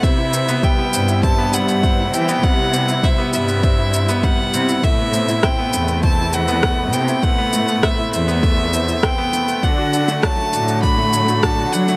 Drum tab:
SH |x-xxx-xxx-xxx-xx|x-xxx-xxx-xxx-xx|x-xxx-xxx-xxx-xx|x-xxx-xxx-xxx-xx|
SD |----------------|----------------|----r-------r---|----r-------r---|
BD |o---o---o---o---|o---o---o---o---|o---o---o---o---|o---o---o---o---|

SH |x-xxx-xxx-xxx-xx|
SD |----r-------r---|
BD |o---o---o---o---|